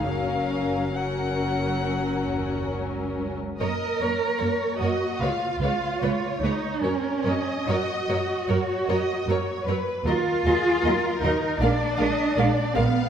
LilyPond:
<<
  \new Staff \with { instrumentName = "Violin section" } { \time 4/4 \key fis \major \tempo 4 = 75 eis''4 fis''2 r4 | cis''8 cis''8 cis''8 cis''8 cis''8 cis''8 cis''8 cis''8 | cis''8 cis''8 cis''8 cis''8 cis''8 cis''8 cis''8 cis''8 | dis''8 dis''8 dis''8 dis''8 eis''8 eis''8 eis''8 eis''8 | }
  \new Staff \with { instrumentName = "Violin section" } { \time 4/4 \key fis \major <cis' ais'>4 <cis' ais'>2~ <cis' ais'>8. r16 | dis''8 cis''8 cis''8 dis''8 eis''8 eis''8 cis''4 | ais'8 dis''4. cis''8 dis''8 cis''8 b'8 | ais'8 gis'8 ais'4 d''8 dis''8 d''8 eis''8 | }
  \new Staff \with { instrumentName = "Cello section" } { \time 4/4 \key fis \major fis,4 fis,4. dis,8 cis,4 | ais'4. fis'8 eis'4. dis'8 | cis'4 fis'2~ fis'8 r8 | eis'4. dis'8 d'4. b8 | }
  \new Staff \with { instrumentName = "Viola section" } { \time 4/4 \key fis \major <fis cis'>4 <fis cis'>2~ <fis cis'>8. r16 | <ais ais'>8 <ais ais'>8 <ais ais'>8 <ais ais'>8 <gis b'>8 <gis b'>8 <gis b'>8 <gis b'>8 | <fis ais'>8 <fis ais'>8 <fis ais'>8 <fis ais'>8 <fis ais'>8 <fis ais'>8 <fis ais'>8 <fis ais'>8 | <fis ais'>8 <fis ais'>8 <fis ais'>8 <fis ais'>8 <gis ais'>8 <gis ais'>8 <gis ais'>8 <gis ais'>8 | }
  \new Staff \with { instrumentName = "Double bass section" } { \clef bass \time 4/4 \key fis \major fis,,2.~ fis,,8. r16 | fis,8 fis,8 fis,8 fis,8 cis,8 cis,8 cis,8 cis,8 | fis,8 fis,8 fis,8 fis,8 fis,8 fis,8 fis,8 fis,8 | dis,8 dis,8 dis,8 dis,8 ais,,8 ais,,8 ais,,8 ais,,8 | }
>>